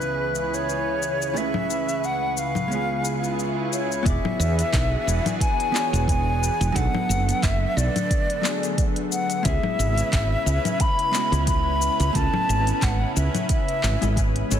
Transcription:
Already playing: analog synth pad C#2 C#3 E3 G#4 B4, hollow-body jazz guitar B3 C#4 E4 G#4 B4, flute B4, synth texture B4 C#6
0.01 cabasa
0.35 cabasa
0.54 flute C#5, cabasa
0.69 cabasa
1.03 cabasa
1.22 cabasa
1.33 hollow-body jazz guitar C#3 A3 C#4 E4, cabasa
1.37 hollow-body jazz guitar G#4 B4, flute E5
1.54 low conga
1.70 cabasa
1.89 cabasa
2.04 flute F#5, cabasa
2.37 flute F5, cabasa
2.55 low conga, cabasa
2.68 analog synth pad C#2 C#3 F4 G#4, hollow-body jazz guitar G#3 B3 C#4, swell, cabasa
2.73 hollow-body jazz guitar F4 G#4
3.05 cabasa
3.24 cabasa
3.39 cabasa
3.73 flute C#5, cabasa
3.92 cabasa
4.03 fretless electric bass E1, analog synth pad E3 B3 D4 F#4 G#4, hollow-body jazz guitar B3 E4 F#4, flute E5, kick, closed hi-hat
4.07 hollow-body jazz guitar G#4 D5, cabasa
4.25 low conga
4.40 fretless electric bass E2, cabasa
4.59 closed hi-hat, cabasa
4.73 fretless electric bass B1, kick, clap, closed hi-hat, cabasa
5.07 fretless electric bass E1, cabasa
5.26 closed hi-hat, low conga, cabasa
5.40 flute G#5, kick, closed hi-hat, cabasa
5.60 closed hi-hat
5.72 hollow-body jazz guitar B3 E4 F#4, clap, cabasa
5.77 hollow-body jazz guitar G#4 C#5
5.93 fretless electric bass E1, closed hi-hat, cabasa
6.08 flute G#5, kick, closed hi-hat, cabasa
6.43 cabasa
6.61 fretless electric bass E1, closed hi-hat, cabasa
6.72 fretless electric bass B1, hollow-body jazz guitar F#3 A3 B3, flute F#5, kick, closed hi-hat
6.77 analog synth pad D3 A3, hollow-body jazz guitar D4 A4, cabasa
6.95 low conga
7.09 fretless electric bass F#1, cabasa
7.29 closed hi-hat, cabasa
7.43 fretless electric bass F#1, flute E5, kick, clap, closed hi-hat, cabasa
7.77 fretless electric bass B1, flute D5, cabasa
7.96 closed hi-hat, low conga, cabasa
8.11 kick, closed hi-hat, cabasa
8.30 closed hi-hat
8.41 hollow-body jazz guitar F#3 A3 B3, clap, cabasa
8.46 hollow-body jazz guitar D4 G#4
8.63 closed hi-hat, cabasa
8.78 kick, closed hi-hat, cabasa
8.96 closed hi-hat
9.12 flute F#5, cabasa
9.30 closed hi-hat, cabasa
9.43 fretless electric bass C#2, analog synth pad C#3 C#4 E4 B4, hollow-body jazz guitar G#3 B3 C#4, flute E5, kick, closed hi-hat, cabasa
9.47 hollow-body jazz guitar E4 G#4
9.63 low conga
9.79 fretless electric bass G#1, cabasa
9.98 closed hi-hat, cabasa
10.13 fretless electric bass G#1, kick, clap, closed hi-hat, cabasa
10.46 fretless electric bass C#2, cabasa
10.65 closed hi-hat, low conga, cabasa
10.80 flute B5, kick, closed hi-hat, cabasa
10.99 closed hi-hat
11.11 hollow-body jazz guitar G#3 B3 C#4, clap, cabasa
11.16 hollow-body jazz guitar E4 F#4
11.32 fretless electric bass C#2, closed hi-hat, cabasa
11.47 flute B5, kick, closed hi-hat, cabasa
11.82 cabasa
12.00 fretless electric bass C#2, closed hi-hat, cabasa
12.13 fretless electric bass C#2, analog synth pad C#3, hollow-body jazz guitar A3 B3 C#4, flute A5, kick, closed hi-hat, cabasa
12.17 hollow-body jazz guitar E4 A4
12.34 low conga
12.49 fretless electric bass G#1, cabasa
12.67 closed hi-hat, cabasa
12.82 fretless electric bass G#1, flute F#5, kick, clap, closed hi-hat, cabasa
13.16 fretless electric bass C#2, flute E5, cabasa
13.35 closed hi-hat, low conga, cabasa
13.49 flute E5, kick, closed hi-hat, cabasa
13.68 closed hi-hat
13.83 fretless electric bass G#1, clap, cabasa
14.01 fretless electric bass G#1, hollow-body jazz guitar G#3 B3 C#4 E4 A4, closed hi-hat, cabasa
14.16 hollow-body jazz guitar G#3 B3 C#4 E4 B4, kick, closed hi-hat, cabasa
14.36 closed hi-hat
14.50 fretless electric bass G#1, hollow-body jazz guitar G#3 B3 C#4 E4 A4, flute C#5, cabasa

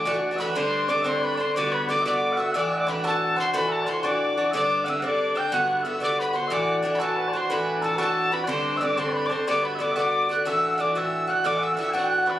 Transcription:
Already playing: cello D2, bagpipes D5, tin whistle D6
0.05 bouzouki A2 E3 D4 F#4
0.14 bouzouki E3 D4 F#4
0.31 bouzouki E3 D4 F#4
0.36 bouzouki A2 E3, bagpipes B4 E5
0.40 bouzouki D4 F#4, tin whistle B5
0.55 bouzouki G2 D3 C4 D4, bagpipes C5, tin whistle C6
0.88 bouzouki G2 D3 C4 D4, bagpipes D5, tin whistle D6
1.02 bouzouki D3 C4 D4, bagpipes E5
1.06 bouzouki G2, bagpipes C5, tin whistle C6
1.18 bagpipes B4 D5
1.24 tin whistle B5
1.35 bouzouki D4, bagpipes D5
1.39 bouzouki D3 C4, bagpipes C5, tin whistle C6
1.55 bouzouki G2 D3 B3 F#4, bagpipes D5, tin whistle D6
1.72 bagpipes B4, tin whistle B5
1.89 bouzouki G2 D3 B3 F#4, bagpipes D5, tin whistle D6
2.01 bouzouki F#4, bagpipes E5
2.06 bouzouki G2 D3 B3, bagpipes D5, tin whistle D6
2.33 bagpipes E5 F#5
2.37 bouzouki D3 B3 F#4, tin whistle E6
2.52 bouzouki A2 E3 D4 F#4, bagpipes D5 F#5
2.58 tin whistle D6
2.68 tin whistle E6
2.74 bagpipes D5 E5
2.80 tin whistle D6
2.87 bouzouki A2 E3 D4 F#4, bagpipes B4, tin whistle B5
3.04 bouzouki A2 E3 D4 F#4, bagpipes A4, tin whistle A5
3.36 bouzouki E3 D4 F#4, bagpipes C5, tin whistle C6
3.53 bouzouki A2 E3 D4 F#4, bagpipes B4, tin whistle B5
3.69 bagpipes A4, tin whistle A5
3.82 bagpipes C5 D5
3.86 bouzouki A2 E3 D4 F#4, tin whistle C6
4.03 bouzouki A2 E3 D4 F#4, bagpipes D5, tin whistle D6
4.37 bouzouki E3 D4 F#4
4.51 bouzouki G2 D3 C4, bagpipes E5, tin whistle D6
4.55 bouzouki D4, bagpipes D5
4.84 bouzouki G2 D3 C4 D4, bagpipes F#5
4.89 bagpipes E5, tin whistle E6
5.00 bouzouki G2 D3 C4 D4, bagpipes F#5
5.04 bagpipes D5, tin whistle D6
5.35 bouzouki D3 C4 D4, bagpipes G5, tin whistle G6
5.52 bouzouki G2 D3 B3 F#4, bagpipes F#5, tin whistle F#6
5.83 bouzouki G2 D3 B3 F#4, bagpipes E5
5.87 tin whistle E6
6.00 bouzouki G2 D3 B3 F#4, bagpipes D5, tin whistle D6
6.19 bagpipes B4, tin whistle B5
6.33 bouzouki D3 B3 F#4, bagpipes C5, tin whistle C6
6.47 bouzouki A2 E3, bagpipes D5 E5
6.51 bouzouki D4 F#4, tin whistle D6
6.83 bouzouki A2 E3 D4 F#4
6.95 tin whistle B5
6.99 bouzouki A2 E3 D4 F#4, bagpipes A4
7.04 tin whistle A5
7.17 bagpipes B4
7.28 bagpipes C5 D5
7.33 bouzouki E3 D4 F#4, tin whistle C6
7.49 bouzouki A2 E3 D4 F#4, bagpipes B4, tin whistle B5
7.82 bouzouki A2 E3 D4 F#4, bagpipes A4, tin whistle A5
7.95 bouzouki A2 D4 F#4, bagpipes A4 B4
7.99 bouzouki E3, tin whistle A5
8.32 bouzouki E3 D4 F#4, bagpipes B4, tin whistle B5
8.44 bouzouki G2 D3 C4, bagpipes C5 D5
8.48 bouzouki D4, tin whistle C6
8.76 bagpipes E5, tin whistle E6
8.80 bouzouki G2 D3 C4 D4, bagpipes D5
8.85 tin whistle D6
8.97 bouzouki G2 D3 C4 D4, bagpipes C5, tin whistle C6
9.09 bagpipes B4 D5
9.16 tin whistle B5
9.26 bouzouki D4, bagpipes D5, tin whistle D6
9.30 bouzouki D3 C4, bagpipes C5, tin whistle C6
9.47 bouzouki G2 D3 B3 F#4, bagpipes D5, tin whistle D6
9.63 bagpipes B4, tin whistle B5
9.75 bagpipes D5 E5
9.79 bouzouki G2 D3 B3 F#4, tin whistle D6
9.91 bagpipes E5
9.96 bouzouki G2 D3 B3 F#4, bagpipes D5, tin whistle D6
10.29 bouzouki D3 B3 F#4, tin whistle F#6
10.45 bouzouki A2 E3 D4 F#4, bagpipes E5, tin whistle E6
10.75 bouzouki A2, bagpipes D5 F#5
10.79 bouzouki E3 D4 F#4, tin whistle D6
10.95 bouzouki A2 E3 D4 F#4, bagpipes E5, tin whistle E6
11.27 bouzouki E3 D4 F#4, bagpipes F#5, tin whistle F#6
11.44 bouzouki A2 E3 D4 F#4, bagpipes D5, tin whistle D6
11.57 bagpipes E5 F#5
11.64 tin whistle E6
11.73 bouzouki A2, bagpipes E5 F#5
11.77 bouzouki E3 D4 F#4, tin whistle E6
11.90 bouzouki F#4, bagpipes F#5 G#5
11.94 bouzouki A2 E3 D4, tin whistle F#6
12.04 bagpipes G5
12.15 bagpipes F#5
12.26 bouzouki E3 D4 F#4, bagpipes B4
12.30 tin whistle B5

